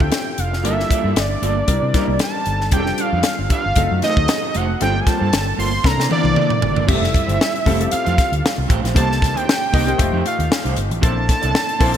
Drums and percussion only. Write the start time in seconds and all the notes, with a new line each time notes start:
0.00 kick
0.12 snare, closed hi-hat
0.38 closed hi-hat
0.53 snare
0.65 closed hi-hat
0.80 snare
0.91 kick, closed hi-hat
1.16 snare, closed hi-hat
1.43 closed hi-hat
1.68 kick, closed hi-hat
1.94 kick, snare, closed hi-hat
2.19 snare, closed hi-hat
2.46 closed hi-hat
2.61 snare
2.71 kick, closed hi-hat
2.86 snare
2.98 closed hi-hat
3.23 snare, closed hi-hat
3.50 kick, closed hi-hat
3.76 kick, closed hi-hat
4.02 snare, closed hi-hat
4.17 kick
4.28 snare, closed hi-hat
4.54 closed hi-hat
4.81 closed hi-hat
5.07 kick, snare, closed hi-hat
5.33 snare, closed hi-hat
5.60 open hi-hat
5.84 kick, snare
6.00 snare
6.11 high tom
6.25 high tom
6.36 mid tom
6.50 mid tom
6.62 floor tom
6.76 floor tom
6.89 kick, crash
7.04 snare
7.14 kick, closed hi-hat
7.29 closed hi-hat
7.41 snare
7.56 closed hi-hat
7.66 kick, open hi-hat
7.81 closed hi-hat
7.91 closed hi-hat
8.06 closed hi-hat
8.18 kick, snare, closed hi-hat
8.33 closed hi-hat
8.46 snare
8.70 kick, closed hi-hat
8.85 snare, closed hi-hat
8.96 kick, closed hi-hat
9.12 snare
9.22 kick, snare, closed hi-hat
9.37 closed hi-hat
9.49 snare
9.74 kick, open hi-hat
9.88 closed hi-hat
9.99 kick, closed hi-hat
10.26 closed hi-hat
10.40 closed hi-hat
10.52 snare
10.66 closed hi-hat
10.76 closed hi-hat
10.91 closed hi-hat
11.03 kick, closed hi-hat
11.29 kick, snare, closed hi-hat
11.43 closed hi-hat
11.55 snare
11.69 closed hi-hat
11.81 kick, open hi-hat
11.94 closed hi-hat